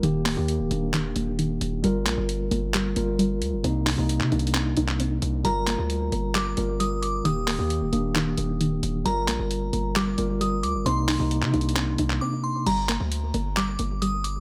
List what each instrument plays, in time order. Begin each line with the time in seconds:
0.02 808-style bass D#1, tine electric piano D#3 A#3 G4, synth pluck D#3, closed hi-hat
0.26 808-style bass D1, synth pluck A#3, clap, open hi-hat
0.36 808-style bass D#2, tine electric piano D#3 A#3 G4
0.48 closed hi-hat
0.60 808-style bass D1
0.70 808-style bass D#1, tine electric piano D#3 A#3 D4, synth pluck A#3, closed hi-hat
0.94 synth pluck D#3, clap, closed hi-hat
1.16 808-style bass D#1, synth pluck A#3, closed hi-hat
1.39 synth pluck D#3, closed hi-hat
1.61 808-style bass D#1, closed hi-hat
1.83 808-style bass G1, tine electric piano G3 F4 A#4, synth pluck G3, closed hi-hat
2.06 808-style bass A#1, synth pluck A#3, clap, closed hi-hat
2.18 808-style bass G1
2.29 closed hi-hat
2.51 808-style bass G1, synth pluck A#3, closed hi-hat
2.74 synth pluck G3, clap, closed hi-hat
2.95 808-style bass G1, tine electric piano G3 F4 A#4, synth pluck A#3, closed hi-hat
3.19 synth pluck G3, closed hi-hat
3.42 808-style bass D2, closed hi-hat
3.53 808-style bass G1
3.63 808-style bass C2, tine electric piano C3 A#3 D#4, synth pluck C4, closed hi-hat
3.86 synth pluck D#4, clap, open hi-hat
3.97 808-style bass C2, tine electric piano C3 A#3 D#4
4.09 closed hi-hat
4.21 808-style bass C3, clap
4.31 808-style bass C2, tine electric piano C3 A#3 D4, synth pluck D#4, closed hi-hat
4.39 closed hi-hat
4.47 closed hi-hat
4.55 synth pluck C4, clap, closed hi-hat
4.77 808-style bass C2, synth pluck D#4, closed hi-hat
4.88 clap
5.00 synth pluck C4, closed hi-hat
5.22 808-style bass C2, closed hi-hat
5.44 808-style bass G1, tine electric piano G3 F4 A#4, synth pluck G3, synth bell A#5, closed hi-hat
5.67 synth pluck A#3, clap, closed hi-hat
5.78 808-style bass D2
5.90 closed hi-hat
6.12 808-style bass G1, synth pluck A#3, closed hi-hat
6.35 synth pluck G3, synth bell D6, clap, closed hi-hat
6.56 808-style bass G1, tine electric piano G3 F4 A#4, synth pluck A#3, closed hi-hat
6.80 synth pluck G3, synth bell D#6, closed hi-hat
7.02 synth bell D6, closed hi-hat
7.24 808-style bass D#1, tine electric piano D#3 A#3 G4, synth pluck D#3, synth bell D#6, closed hi-hat
7.47 808-style bass D1, synth pluck A#3, clap, open hi-hat
7.58 808-style bass D#2, tine electric piano D#3 A#3 G4
7.70 closed hi-hat
7.82 808-style bass D1
7.92 808-style bass D#1, tine electric piano D#3 A#3 D4, synth pluck A#3, closed hi-hat
8.15 synth pluck D#3, clap, closed hi-hat
8.38 808-style bass D#1, synth pluck A#3, closed hi-hat
8.60 synth pluck D#3, closed hi-hat
8.83 808-style bass D#1, closed hi-hat
9.04 808-style bass G1, tine electric piano G3 F4 A#4, synth pluck G3, synth bell A#5, closed hi-hat
9.28 808-style bass A#1, synth pluck A#3, clap, closed hi-hat
9.39 808-style bass G1
9.51 closed hi-hat
9.73 808-style bass G1, synth pluck A#3, closed hi-hat
9.96 synth pluck G3, synth bell D6, clap, closed hi-hat
10.17 808-style bass G1, tine electric piano G3 F4 A#4, synth pluck A#3, closed hi-hat
10.41 synth pluck G3, synth bell D#6, closed hi-hat
10.63 808-style bass D2, synth bell D6, closed hi-hat
10.75 808-style bass G1
10.85 808-style bass C2, tine electric piano C3 A#3 D#4, synth pluck C4, synth bell C6, closed hi-hat
11.08 synth pluck D#4, clap, open hi-hat
11.19 808-style bass C2, tine electric piano C3 A#3 D#4
11.31 closed hi-hat
11.42 808-style bass C3, clap
11.52 808-style bass C2, tine electric piano C3 A#3 D4, synth pluck D#4, closed hi-hat
11.61 closed hi-hat
11.69 closed hi-hat
11.76 synth pluck C4, clap, closed hi-hat
11.98 808-style bass C2, synth pluck D#4, closed hi-hat
12.10 clap
12.21 synth pluck C4, synth bell D6
12.44 synth bell C6
12.66 808-style bass G1, synth pluck G3, synth bell A#5, closed hi-hat, crash
12.89 synth pluck A#3, clap, closed hi-hat
13.00 808-style bass D2
13.12 closed hi-hat
13.34 808-style bass G1, synth pluck A#3, closed hi-hat
13.57 synth pluck G3, synth bell D6, clap, closed hi-hat
13.79 808-style bass G1, synth pluck A#3, closed hi-hat
14.02 synth pluck G3, synth bell D#6, closed hi-hat
14.24 synth bell D6, closed hi-hat